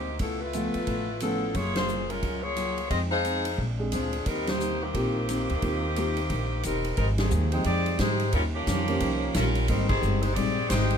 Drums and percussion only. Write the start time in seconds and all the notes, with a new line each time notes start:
0.19 kick, ride
0.53 hi-hat pedal, ride
0.74 ride
0.87 kick, ride
1.20 hi-hat pedal, ride
1.55 kick, ride
1.76 snare, ride
1.88 hi-hat pedal
2.10 ride
2.23 kick, ride
2.56 hi-hat pedal, ride
2.78 ride
2.90 kick, ride
3.25 hi-hat pedal, ride
3.45 ride
3.58 kick
3.92 hi-hat pedal, ride
4.13 ride
4.26 kick, ride
4.47 snare, ride
4.60 hi-hat pedal
4.94 kick, ride
5.29 hi-hat pedal, ride
5.50 ride
5.62 kick, ride
5.96 hi-hat pedal, ride
6.17 ride
6.30 kick, ride
6.63 hi-hat pedal, ride
6.84 ride
6.97 kick, ride
7.18 snare, ride
7.31 hi-hat pedal
7.52 ride
7.64 kick, ride
7.86 ride
7.99 kick, snare, hi-hat pedal, ride
8.20 ride
8.32 kick, ride
8.67 kick, snare, hi-hat pedal, ride
8.88 ride
9.00 kick, ride
9.34 kick, snare, hi-hat pedal, ride
9.55 ride
9.68 kick, ride
9.89 kick, crash
10.02 hi-hat pedal
10.23 ride
10.36 kick, ride
10.70 kick, snare, hi-hat pedal, ride
10.90 ride